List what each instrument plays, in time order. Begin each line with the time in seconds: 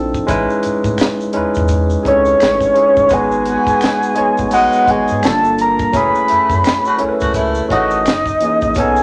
Already playing: analog synth bass A#1, tine electric piano F3 C4 D4 D#4 E4 A4
0.14 kick, maracas
0.27 analog synth bass A1, tine electric piano G#3 C#4 D#4 E4 B4, kick, closed hi-hat, maracas
0.50 maracas
0.63 analog synth bass A2, closed hi-hat, maracas
0.84 analog synth bass A2, kick, maracas
0.98 finger snap, snare, closed hi-hat, maracas
1.20 maracas
1.33 analog synth bass E2, tine electric piano G#3 C#4 D#4 E4, closed hi-hat
1.37 tine electric piano B4
1.54 analog synth bass E2, kick, maracas
1.68 kick, closed hi-hat, maracas
1.90 maracas
2.03 analog synth bass C#2, tine electric piano C4 D#4 E4 G#4, kick, closed hi-hat
2.07 tine electric piano C#4 A4, soft synth lead C#5
2.25 maracas
2.40 analog synth bass A1, finger snap, snare, closed hi-hat, maracas
2.61 kick, maracas
2.73 tine electric piano G#3 C#4 D#4 E4 G#4, closed hi-hat, maracas
2.96 analog synth bass G1, kick, maracas
3.09 analog synth bass G#1, tine electric piano G#3 B3 D#4 F#4 B4, kick, closed hi-hat, maracas
3.13 soft synth lead G#5
3.31 maracas
3.45 horn section B3 D#4 F#4, closed hi-hat, maracas
3.67 analog synth bass A1, kick, maracas
3.81 finger snap, snare, closed hi-hat, maracas
4.03 maracas
4.14 tine electric piano G#3 B3 D#4 F#4 C#5, closed hi-hat
4.19 analog synth bass A1
4.37 analog synth bass A1, kick, maracas
4.51 horn section G#3 B3 D#4, soft synth lead F#5, closed hi-hat, maracas
4.73 maracas
4.86 analog synth bass G#1, tine electric piano G#3 B3 D#4 F#4 G#4, kick, closed hi-hat
4.91 soft synth lead G#5
5.08 analog synth bass G#2, maracas
5.22 analog synth bass G1, tine electric piano G3 A#3 D4 F4 A4, soft synth lead A5, finger snap, snare, closed hi-hat, maracas
5.44 maracas
5.58 soft synth lead A#5, closed hi-hat, maracas
5.79 kick, maracas
5.93 analog synth bass F#1, tine electric piano F#3 A3 C#4 E4 G#4, kick, closed hi-hat, maracas
5.97 soft synth lead B5
6.15 maracas
6.28 analog synth bass F#2, horn section A3 C#4 E4, closed hi-hat, maracas
6.50 analog synth bass F#2, kick, maracas
6.64 finger snap, snare, closed hi-hat, maracas
6.85 horn section A3 C#4 F#4, maracas
6.99 analog synth bass C#2, tine electric piano F#3 A3 C#4 E4 A#4, closed hi-hat
7.09 tine electric piano B4
7.20 analog synth bass C#2, horn section A3 C#4 F#4, kick, maracas
7.34 horn section A3 C#4 E4, kick, closed hi-hat, maracas
7.55 maracas
7.68 analog synth bass A1, tine electric piano F#3 A3 C#4 E4 F#4, horn section A3 C#4 F#4, soft synth lead D#5, kick, closed hi-hat
7.91 maracas
8.06 analog synth bass F#1, finger snap, snare, closed hi-hat, maracas
8.26 kick, maracas
8.41 tine electric piano E3 A#3 C#4 D#4 G#4, closed hi-hat, maracas
8.61 analog synth bass A#1, kick, maracas
8.75 analog synth bass B1, tine electric piano F#3 B3 C#4 D#4, kick, closed hi-hat, maracas
8.79 tine electric piano A4, soft synth lead G#5
8.96 maracas